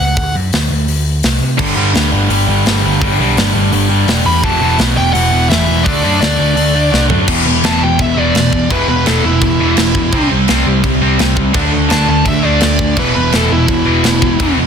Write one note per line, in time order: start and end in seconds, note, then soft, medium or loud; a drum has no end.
0.00 0.17 C#2 medium
0.00 0.35 F#5 medium
0.17 0.33 D2 loud
0.17 kick loud
0.17 open hi-hat medium
0.35 0.51 F#2 loud
0.53 0.69 D2 medium
0.53 snare loud
0.53 open hi-hat medium
0.70 0.86 D2 medium
0.88 1.20 D2 medium
0.88 open hi-hat medium
1.23 1.40 C2 medium
1.23 snare loud
1.23 open hi-hat medium
1.42 1.57 C3 loud
1.58 1.76 G1 medium
1.58 1.75 G2 loud
1.58 1.73 G2 medium
1.58 1.73 D3 medium
1.58 1.76 D3 loud
1.58 1.77 G3 loud
1.58 1.73 G3 medium
1.58 kick loud
1.58 crash loud
1.76 1.93 G1 medium
1.76 1.91 G2 loud
1.76 1.93 G2 medium
1.76 1.91 D3 medium
1.76 1.93 D3 medium
1.76 1.91 G3 medium
1.76 1.94 G3 medium
1.94 2.11 D2 medium
1.94 2.11 G2 medium
1.94 2.11 D3 medium
1.94 2.12 G3 medium
1.94 snare loud
1.94 open hi-hat medium
2.11 2.29 G1 medium
2.11 2.28 G2 loud
2.11 2.29 D3 loud
2.11 2.30 G3 loud
2.30 2.46 G1 medium
2.30 2.46 G2 medium
2.30 2.46 D3 medium
2.30 2.48 G3 loud
2.30 open hi-hat medium
2.47 2.64 G1 medium
2.47 2.64 G2 medium
2.47 2.65 D3 medium
2.47 2.66 G3 medium
2.65 2.82 G1 medium
2.65 2.82 G2 medium
2.65 2.83 D3 medium
2.65 2.85 G3 loud
2.65 snare loud
2.65 open hi-hat medium
2.84 3.00 G1 loud
2.84 3.00 G2 loud
2.84 3.00 D3 loud
2.84 3.02 G3 loud
3.01 3.18 G1 medium
3.01 3.18 G2 medium
3.01 3.16 G2 medium
3.01 3.19 D3 loud
3.01 3.16 D3 loud
3.01 3.20 G3 loud
3.01 3.17 G3 loud
3.01 kick loud
3.19 3.35 B1 medium
3.19 3.35 G2 medium
3.19 3.34 G2 medium
3.19 3.36 D3 medium
3.19 3.34 D3 medium
3.19 3.37 G3 medium
3.19 3.34 G3 loud
3.36 3.53 G1 medium
3.36 3.53 G2 medium
3.36 3.53 D3 medium
3.36 3.54 G3 medium
3.36 snare loud
3.36 open hi-hat medium
3.54 3.71 G1 medium
3.54 3.71 G2 medium
3.54 3.71 D3 loud
3.54 3.72 G3 loud
3.72 4.04 G1 medium
3.72 3.88 G2 medium
3.72 3.88 D3 medium
3.72 3.89 G3 loud
3.72 open hi-hat medium
3.89 4.06 G2 medium
3.89 4.06 D3 medium
3.89 4.07 G3 medium
4.07 4.24 E1 loud
4.07 4.24 G2 medium
4.07 4.25 D3 medium
4.07 4.25 G3 loud
4.07 snare loud
4.07 open hi-hat medium
4.25 4.42 E2 medium
4.25 4.42 G2 loud
4.25 4.43 D3 loud
4.25 4.43 G3 loud
4.25 4.42 B5 loud
4.43 4.60 E1 loud
4.43 4.59 E2 loud
4.43 4.58 E2 medium
4.43 4.60 B2 loud
4.43 4.58 B2 loud
4.43 4.61 E3 loud
4.43 4.59 E3 medium
4.43 4.77 A5 loud
4.43 kick loud
4.60 4.77 E1 loud
4.60 4.77 E2 medium
4.60 4.76 E2 medium
4.60 4.77 B2 loud
4.60 4.76 B2 loud
4.60 4.77 E3 medium
4.60 4.76 E3 medium
4.78 4.95 B1 medium
4.78 4.95 E2 medium
4.78 4.96 B2 medium
4.78 4.96 E3 loud
4.78 snare loud
4.78 open hi-hat medium
4.97 5.13 E1 medium
4.97 5.13 E2 loud
4.97 5.13 B2 loud
4.97 5.13 E3 loud
4.97 5.13 G5 loud
5.13 5.31 E1 loud
5.13 5.31 E2 medium
5.13 5.31 B2 loud
5.13 5.32 E3 loud
5.13 5.49 F#5 medium
5.13 open hi-hat medium
5.32 5.49 E1 medium
5.32 5.48 E2 medium
5.32 5.49 B2 medium
5.32 5.49 E3 medium
5.49 5.67 E1 loud
5.49 5.66 E2 medium
5.49 5.66 B2 medium
5.49 5.66 E3 loud
5.49 5.87 E5 medium
5.49 snare loud
5.49 open hi-hat medium
5.67 5.88 E1 medium
5.67 5.84 E2 loud
5.67 5.84 B2 medium
5.67 5.85 E3 loud
5.84 6.02 D2 medium
5.84 6.02 D3 loud
5.84 6.00 D3 medium
5.84 6.03 A3 loud
5.84 6.00 A3 medium
5.84 6.03 D4 loud
5.84 6.00 D4 loud
5.84 6.18 D5 medium
5.84 kick loud
5.84 open hi-hat medium
6.03 6.20 F#2 loud
6.03 6.19 D3 medium
6.03 6.18 D3 loud
6.03 6.20 A3 medium
6.03 6.18 A3 medium
6.03 6.20 D4 medium
6.03 6.18 D4 loud
6.21 6.38 D2 loud
6.21 6.38 D3 medium
6.21 6.38 A3 medium
6.21 6.39 D4 medium
6.21 7.06 D5 medium
6.21 snare loud
6.21 open hi-hat medium
6.39 6.55 D2 medium
6.39 6.55 D3 loud
6.39 6.55 A3 loud
6.39 6.56 D4 loud
6.56 6.89 D2 medium
6.56 6.73 D3 loud
6.56 6.74 A3 loud
6.56 6.74 D4 loud
6.56 open hi-hat medium
6.75 6.90 D3 medium
6.75 6.91 A3 medium
6.75 6.91 D4 medium
6.92 7.09 C2 medium
6.92 7.08 D3 medium
6.92 7.08 A3 medium
6.92 7.09 D4 loud
6.92 snare medium
7.09 7.27 F#2 loud
7.09 7.26 D3 loud
7.09 7.27 A3 medium
7.09 7.27 D4 loud
7.09 floor tom medium
7.26 7.43 E1 medium
7.26 8.67 E2 loud
7.26 7.45 E2 medium
7.26 8.69 B2 loud
7.26 7.45 B2 medium
7.26 7.45 E3 medium
7.26 8.71 E3 loud
7.26 kick loud
7.26 crash loud
7.26 crash medium
7.46 7.61 E1 medium
7.46 7.62 E2 medium
7.46 7.62 B2 medium
7.64 7.79 E1 medium
7.64 7.81 E2 medium
7.64 7.81 B2 loud
7.64 7.81 E3 loud
7.64 7.83 A5 loud
7.64 snare loud
7.64 crash medium
7.82 7.97 E1 medium
7.82 7.98 E2 medium
7.82 7.98 B2 medium
7.82 8.00 G5 medium
7.99 8.14 E1 medium
7.99 8.15 E2 medium
7.99 8.15 B2 medium
7.99 8.20 E5 medium
7.99 kick loud
7.99 crash medium
8.17 8.32 E1 medium
8.17 8.34 E2 medium
8.17 8.34 B2 loud
8.17 8.34 E3 loud
8.17 8.70 D5 medium
8.35 8.65 E1 medium
8.35 8.51 E2 medium
8.35 8.51 B2 medium
8.35 snare loud
8.35 crash medium
8.52 8.68 E2 medium
8.52 8.69 B2 medium
8.52 kick medium
8.69 8.86 E1 loud
8.69 10.11 E2 loud
8.69 8.87 E2 medium
8.69 10.11 B2 loud
8.69 8.87 B2 loud
8.69 10.12 E3 loud
8.69 8.88 E3 medium
8.69 8.88 B4 medium
8.69 kick loud
8.69 crash medium
8.89 9.04 E1 medium
8.89 9.05 E2 medium
8.89 9.05 B2 medium
8.89 9.06 B4 medium
9.06 9.21 E1 medium
9.06 9.23 E2 medium
9.06 9.23 B2 medium
9.06 9.24 E3 medium
9.06 9.23 A4 medium
9.06 snare loud
9.06 crash medium
9.24 9.39 E1 medium
9.24 9.40 E2 medium
9.24 9.40 B2 medium
9.24 10.28 E4 medium
9.41 9.57 E1 medium
9.41 9.58 E2 medium
9.41 9.58 B2 medium
9.41 kick loud
9.41 crash medium
9.60 9.75 E1 medium
9.60 9.77 E2 medium
9.60 9.77 B2 medium
9.60 9.77 E3 loud
9.77 10.13 E1 medium
9.77 9.93 E2 medium
9.77 9.94 B2 medium
9.77 snare loud
9.77 crash medium
9.95 10.12 E2 medium
9.95 10.12 B2 medium
9.95 kick medium
10.12 10.28 C2 loud
10.12 11.53 C3 medium
10.12 10.29 C3 medium
10.12 11.54 G3 loud
10.12 10.29 G3 loud
10.12 11.55 C4 loud
10.12 10.30 C4 loud
10.12 kick loud
10.12 crash medium
10.30 10.46 C2 medium
10.30 10.46 C3 medium
10.30 10.47 G3 medium
10.48 10.64 C2 loud
10.48 10.65 C3 medium
10.48 10.66 G3 medium
10.48 10.66 C4 loud
10.48 snare loud
10.48 crash medium
10.66 10.81 C2 medium
10.66 10.82 C3 medium
10.66 10.82 G3 medium
10.84 10.99 C2 medium
10.84 11.00 C3 medium
10.84 11.00 G3 medium
10.84 kick loud
10.84 crash medium
11.02 11.17 C2 medium
11.02 11.18 C3 medium
11.02 11.18 G3 loud
11.02 11.19 C4 loud
11.19 11.49 C2 loud
11.19 11.35 C3 medium
11.19 11.35 G3 medium
11.19 snare loud
11.19 crash medium
11.36 11.53 C3 medium
11.36 11.53 G3 medium
11.36 kick medium
11.53 11.70 D2 medium
11.53 11.70 D3 medium
11.53 12.96 D3 loud
11.53 11.70 A3 loud
11.53 12.96 A3 loud
11.53 11.71 D4 loud
11.53 12.97 D4 loud
11.53 kick loud
11.53 crash medium
11.71 11.88 D2 loud
11.71 11.87 D3 medium
11.71 11.88 A3 medium
11.89 12.06 D2 medium
11.89 12.05 D3 medium
11.89 12.06 A3 medium
11.89 12.07 D4 loud
11.89 12.08 A5 loud
11.89 snare loud
11.89 crash medium
12.06 12.24 D2 loud
12.06 12.23 D3 medium
12.06 12.24 A3 medium
12.06 12.27 A5 medium
12.25 12.41 D2 loud
12.25 12.42 D3 medium
12.25 12.42 A3 loud
12.25 12.45 E5 loud
12.25 kick loud
12.25 crash medium
12.43 12.59 D2 medium
12.43 12.59 D3 medium
12.43 12.60 A3 loud
12.43 12.61 D4 loud
12.43 12.96 D5 medium
12.60 12.92 D2 medium
12.60 12.77 D3 medium
12.60 12.77 A3 medium
12.60 snare loud
12.60 crash medium
12.79 12.96 D3 medium
12.79 12.96 A3 loud
12.79 kick medium
12.96 13.12 E1 medium
12.96 14.38 E2 loud
12.96 13.13 E2 medium
12.96 13.14 B2 loud
12.96 14.39 B2 loud
12.96 13.14 E3 loud
12.96 14.41 E3 loud
12.96 13.15 B4 medium
12.96 kick loud
12.96 crash medium
13.15 13.31 E1 medium
13.15 13.31 E2 medium
13.15 13.31 B2 medium
13.15 13.36 B4 medium
13.32 13.48 E1 medium
13.32 13.48 E2 loud
13.32 13.49 B2 medium
13.32 13.50 E3 loud
13.32 13.52 A4 medium
13.32 snare loud
13.32 crash medium
13.50 13.66 E1 medium
13.50 13.66 E2 medium
13.50 13.66 B2 medium
13.50 14.55 E4 loud
13.68 13.84 E1 medium
13.68 13.84 E2 medium
13.68 13.84 B2 medium
13.68 kick loud
13.68 crash medium
13.85 14.02 E1 medium
13.85 14.02 E2 loud
13.85 14.03 B2 loud
13.85 14.03 E3 loud
14.03 14.35 E1 medium
14.03 14.20 E2 medium
14.03 14.20 B2 medium
14.03 snare loud
14.03 crash medium
14.22 14.38 E2 medium
14.22 14.38 B2 medium
14.22 kick medium
14.39 14.55 E1 medium
14.39 14.67 E2 loud
14.39 14.56 E2 medium
14.39 14.67 B2 loud
14.39 14.57 B2 loud
14.39 14.57 E3 medium
14.39 14.67 E3 loud
14.39 kick loud
14.39 crash medium
14.58 14.67 E1 loud
14.58 14.67 E2 medium
14.58 14.67 B2 medium